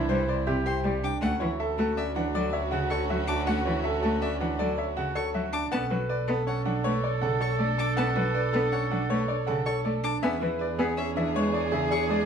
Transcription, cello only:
0.09 0.23 G3 medium
0.47 0.61 C3 medium
0.84 0.98 G3 medium
1.22 1.36 A3 loud
1.41 1.55 E3 medium
1.78 1.92 A3 medium
2.15 2.29 E3 medium
2.34 2.48 F#3 loud
2.71 2.86 C#3 medium
3.10 3.24 F#3 medium
3.47 3.61 A3 medium
3.66 3.80 E3 medium
4.04 4.17 A3 medium
4.41 4.55 E3 medium
4.59 4.73 F#3 medium
4.97 5.11 C#3 medium
5.35 5.49 F#3 medium
5.72 5.86 B3 medium
5.90 6.04 F#3 medium
6.28 6.42 B3 medium
6.65 6.79 F#3 medium
6.84 6.98 A3 medium
7.22 7.36 C#3 medium
7.59 7.73 A3 medium
7.97 8.11 B3 loud
8.16 8.30 F#3 medium
8.54 8.68 B3 medium
8.91 9.05 F#3 medium
9.10 9.24 A3 loud
9.48 9.62 C#3 medium
9.85 9.99 A3 medium
10.23 10.36 B3 loud
10.41 10.55 E3 medium
10.79 10.93 B3 medium
11.17 11.30 E3 medium
11.35 11.49 G#3 loud
11.72 11.86 C#3 medium
12.09 12.23 G#3 medium

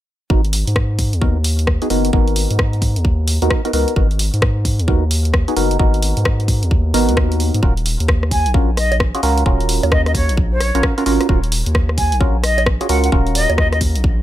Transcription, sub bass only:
0.30 0.64 G#1 medium
0.67 1.15 G#2 medium
1.13 1.79 D#2 medium
1.90 2.11 F#1 medium
2.13 2.47 G#1 medium
2.51 2.98 G#2 medium
2.96 3.39 D#2 medium
3.42 3.49 D#2 medium
3.73 3.86 C#2 medium
3.96 4.31 G#1 medium
4.34 4.81 G#2 medium
4.79 5.45 D#2 medium
5.57 5.77 F#1 medium
5.80 6.14 G#1 medium
6.17 6.64 G#2 medium
6.63 6.93 D#2 medium
6.94 7.10 G#1 medium
7.08 7.51 D#2 medium
7.54 7.62 G#2 loud
7.63 7.97 D#1 medium
8.00 8.47 D#2 medium
8.46 9.12 A#1 medium
9.23 9.44 C#2 medium
9.46 9.80 D#1 medium
9.83 10.31 D#2 medium
10.29 10.72 A#1 medium
10.75 10.82 A#1 medium
11.06 11.19 G#1 medium
11.29 11.63 D#1 medium
11.67 12.14 D#2 medium
12.12 12.78 A#1 medium
12.89 13.10 C#2 medium
13.12 13.47 D#1 medium
13.50 13.97 D#2 medium
13.95 14.22 A#1 medium

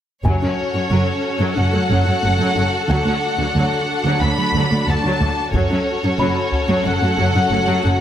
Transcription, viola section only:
0.26 0.41 F#3 soft
0.26 2.85 C#4 soft
0.42 0.49 F#3 soft
0.75 0.82 F#3 soft
0.91 1.07 F#3 soft
1.40 1.56 F#3 soft
1.57 1.64 F#3 soft
1.73 1.80 F#3 soft
1.91 2.06 F#3 soft
2.08 2.14 F#3 soft
2.24 2.31 F#3 soft
2.41 2.56 F#3 soft
2.58 2.64 F#3 soft
2.91 3.06 F#3 soft
2.91 5.50 D4 soft
3.08 3.14 F#3 soft
3.41 3.47 F#3 soft
3.58 3.72 F#3 soft
4.06 4.21 F#3 soft
4.22 4.29 F#3 soft
4.39 4.45 F#3 soft
4.56 4.70 F#3 soft
4.72 4.78 F#3 soft
4.89 4.95 F#3 soft
5.05 5.20 F#3 medium
5.22 5.28 F#3 soft
5.54 5.69 F#3 soft
5.54 8.01 C#4 soft
5.70 5.77 F#3 soft
6.04 6.10 F#3 soft
6.19 6.34 F#3 soft
6.69 6.84 F#3 soft
6.85 6.92 F#3 soft
7.02 7.08 F#3 soft
7.18 7.32 F#3 soft
7.33 7.40 F#3 soft
7.51 7.57 F#3 soft
7.66 7.82 F#3 medium
7.83 7.90 F#3 soft

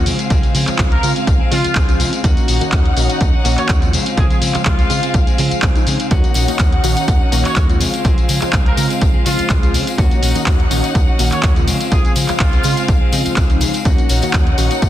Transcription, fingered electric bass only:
0.06 0.15 C#3 loud
0.30 0.39 C#2 loud
0.54 0.63 C#3 medium
0.68 muted fingered electric bass stroke soft
0.79 0.96 C#2 loud
1.03 1.12 C#3 loud
1.27 1.36 C#2 medium
1.40 muted fingered electric bass stroke soft
1.51 1.60 C#3 medium
1.65 muted fingered electric bass stroke soft
1.76 2.02 C#2 medium
2.00 2.09 C#3 medium
2.24 2.33 D#2 loud
2.49 2.57 A#1 medium
2.62 muted fingered electric bass stroke soft
2.72 2.89 D#2 medium
2.97 3.05 A#1 loud
3.21 3.30 D#2 medium
3.45 3.54 A#1 medium
3.58 muted fingered electric bass stroke soft
3.69 3.95 D#2 medium
3.93 4.02 C#3 loud
4.17 4.26 C#2 loud
4.42 4.51 C#3 medium
4.55 muted fingered electric bass stroke soft
4.66 4.83 C#2 medium
4.90 4.99 C#3 loud
5.14 5.23 C#2 medium
5.27 muted fingered electric bass stroke soft
5.38 5.47 C#3 medium
5.51 muted fingered electric bass stroke soft
5.63 5.71 C#2 medium
5.87 5.96 C#3 medium
6.11 6.20 D#2 loud
6.35 6.44 A#1 medium
6.48 muted fingered electric bass stroke soft
6.59 6.76 D#2 medium
6.84 6.92 A#1 loud
7.08 7.17 D#2 medium
7.32 7.41 A#1 medium
7.45 muted fingered electric bass stroke soft
7.56 7.82 D#2 medium
7.81 7.89 C#3 medium
8.05 8.13 C#2 loud
8.29 8.38 C#3 medium
8.42 muted fingered electric bass stroke soft
8.53 8.70 C#2 loud
8.77 8.86 C#3 loud
9.02 9.10 C#2 medium
9.15 muted fingered electric bass stroke soft
9.26 9.34 C#3 medium
9.39 muted fingered electric bass stroke soft
9.50 9.75 C#2 medium
9.74 9.83 C#3 loud
9.98 10.07 D#2 loud
10.22 10.31 A#1 medium
10.35 muted fingered electric bass stroke soft
10.47 10.63 D#2 medium
10.71 10.79 A#1 loud
10.95 11.04 D#2 medium
11.19 11.28 A#1 medium
11.32 muted fingered electric bass stroke soft
11.43 11.69 D#2 medium
11.67 11.76 C#3 loud
11.92 12.00 C#2 loud
12.16 12.25 C#3 medium
12.29 muted fingered electric bass stroke soft
12.40 12.57 C#2 medium
12.64 12.73 C#3 loud
12.88 12.97 C#2 medium
13.02 muted fingered electric bass stroke soft
13.13 13.21 C#3 medium
13.26 muted fingered electric bass stroke soft
13.37 13.63 C#2 medium
13.61 13.70 C#3 loud
13.85 13.94 D#2 loud
14.10 14.18 A#1 medium
14.23 muted fingered electric bass stroke soft
14.34 14.51 D#2 medium
14.58 14.67 A#1 loud
14.82 14.89 D#2 medium

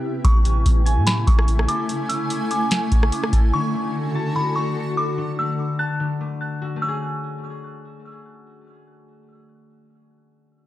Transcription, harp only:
0.25 1.06 A3 medium
0.46 1.27 C#4 medium
0.85 2.35 G#5 loud
1.07 1.89 A3 medium
1.27 2.09 C#4 medium
1.69 3.32 A4 medium
1.89 2.70 A3 medium
2.10 2.91 C#4 medium
2.51 3.80 G#5 medium
2.71 3.74 A3 medium
2.91 3.60 C#4 medium
3.33 5.52 A4 medium
3.54 4.34 D3 loud
3.74 4.56 A3 medium
4.15 5.60 A5 loud
4.35 5.17 D3 medium
4.56 5.38 A3 medium
4.97 6.61 F#4 medium
5.18 5.99 D3 loud
5.39 6.20 A3 medium
5.79 6.94 A5 loud
6.00 6.87 D3 medium
6.21 6.76 A3 medium
6.62 9.05 F#4 medium
6.76 10.09 A3 medium
6.82 9.92 C#4 medium
6.88 9.98 G#4 loud

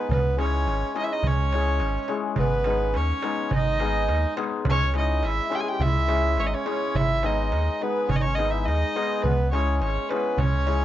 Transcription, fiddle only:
0.00 0.11 B4 medium
0.11 0.37 B4 medium
0.40 0.92 C#5 medium
0.98 1.05 D#5 medium
1.04 1.14 E5 medium
1.13 1.29 D#5 medium
1.27 2.11 C#5 loud
2.37 2.98 B4 loud
2.96 3.53 C#5 medium
3.55 4.35 D#5 loud
4.70 4.95 C#5 loud
4.98 5.26 D#5 medium
5.24 5.56 E5 loud
5.55 5.62 G5 loud
5.60 5.70 G#5 medium
5.68 5.83 G5 loud
5.82 6.41 E5 loud
6.40 6.48 C#5 loud
6.46 6.56 D#5 medium
6.54 6.98 C#5 loud
6.96 7.27 E5 loud
7.25 7.83 D#5 medium
7.82 8.11 B4 medium
8.09 8.17 C#5 loud
8.16 8.23 D#5 medium
8.21 8.36 C#5 loud
8.35 8.52 D#5 medium
8.50 8.66 E5 medium
8.65 9.24 D#5 loud
9.22 9.51 B4 medium
9.52 9.79 C#5 medium
9.81 10.10 C#5 medium
10.09 10.40 B4 medium
10.38 10.85 C#5 medium

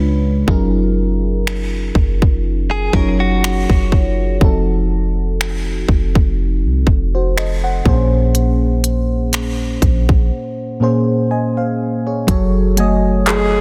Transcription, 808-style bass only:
0.00 0.44 C#2 loud
0.48 1.91 F#1 loud
1.95 2.90 F#1 loud
2.93 3.66 F#1 loud
3.70 4.38 F#1 loud
4.41 5.85 F1 loud
5.88 6.14 F1 loud
6.15 6.66 F1 loud
6.64 6.86 C2 medium
6.87 7.81 F1 loud
7.86 9.78 A#1 loud
9.82 10.08 A#1 loud
10.09 10.31 A#1 medium
12.28 13.61 F#1 loud

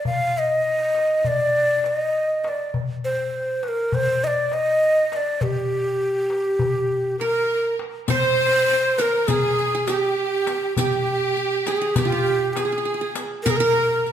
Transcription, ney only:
0.07 0.40 F5 loud
0.38 1.28 D#5 medium
1.27 1.88 D5 medium
1.86 2.44 D#5 medium
2.44 2.49 D#5 medium
2.48 2.74 D5 medium
3.04 3.65 C5 medium
3.63 3.69 B4 medium
3.68 3.96 A#4 medium
3.95 4.25 C5 loud
4.24 4.55 D5 medium
4.24 4.28 D#5 medium
4.53 5.13 D#5 loud
5.13 5.44 D5 medium
5.13 5.17 D#5 medium
5.42 7.19 G4 medium
7.19 7.75 A#4 medium
8.10 9.00 C5 loud
8.98 9.29 A#4 medium
8.98 9.03 B4 medium
9.28 9.88 G#4 medium
9.87 10.76 G4 medium
10.77 11.68 G4 loud
11.67 11.73 G#4 medium
11.72 11.78 G4 medium
11.77 11.96 G#4 medium
11.95 12.55 G4 medium
12.53 13.17 G#4 medium
13.43 13.52 A#4 loud
13.50 13.58 G#4 medium
13.57 14.04 A#4 loud

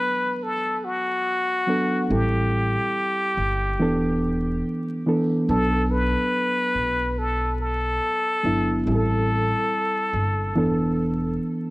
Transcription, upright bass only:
2.10 2.75 A1 loud
3.37 3.80 G1 medium
3.80 4.60 E1 loud
5.49 6.13 B1 loud
6.75 7.98 B1 medium
8.45 8.83 G1 medium
8.87 9.51 A1 loud
10.13 10.56 G1 medium
10.56 11.36 E1 loud

